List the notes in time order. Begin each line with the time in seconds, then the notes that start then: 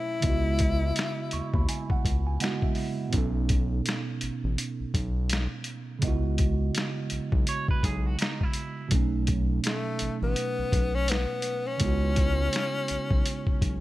Already playing: B2 F#3 A3 C#4 E4 D#5
0.20 C#2 C#3 G#3 B3, kick, closed hi-hat
0.26 E4 F#4 D#5
0.59 kick, closed hi-hat
0.96 finger snap, snare, closed hi-hat
1.31 D#2 C#6, closed hi-hat
1.54 D#2 B5, kick
1.69 G#5, closed hi-hat
1.90 F#5, kick
2.05 C#2, kick, closed hi-hat
2.27 G#5
2.40 C#3 G#3 B3 E4 D#5 F#5, finger snap, closed hi-hat
2.44 F#4, snare
2.62 E5, kick
2.75 open hi-hat
3.09 B2 B3 C#4, closed hi-hat
3.13 B1 D#4, kick
3.18 A4
3.49 kick, closed hi-hat
3.86 finger snap, snare, closed hi-hat
4.21 A1, closed hi-hat
4.44 A1
4.58 closed hi-hat
4.80 B1
4.94 B1, kick, closed hi-hat
5.30 finger snap, snare, closed hi-hat
5.64 closed hi-hat
5.99 C#3 G#3 B3, kick, closed hi-hat
6.03 C#2 E4 D#5
6.08 F#4
6.38 kick, closed hi-hat
6.75 finger snap, snare, closed hi-hat
7.10 B1, closed hi-hat
7.32 B1, kick
7.47 C#5, closed hi-hat
7.68 B4, kick
7.83 B1 G#4, kick, closed hi-hat
8.06 F#4
8.19 D#4, finger snap, snare, closed hi-hat
8.41 E4, kick
8.53 closed hi-hat
8.88 B1 B2 F#3, kick, closed hi-hat
8.93 A3 C#4
8.97 D#4
9.27 kick, closed hi-hat
9.64 A3, finger snap, snare, closed hi-hat
9.99 A1, closed hi-hat
10.22 A1 B3
10.36 closed hi-hat
10.59 B1
10.72 B1, kick, closed hi-hat
10.95 C#4
11.08 B3, finger snap, snare, closed hi-hat
11.42 closed hi-hat
11.67 C#4
11.77 C#2 C#3 G#3 B3, kick, closed hi-hat
11.83 D#4 E4 F#4
12.16 kick, closed hi-hat
12.53 finger snap, snare, closed hi-hat
12.88 B1, closed hi-hat
13.11 B1, kick
13.26 closed hi-hat
13.47 kick
13.62 B1, kick, closed hi-hat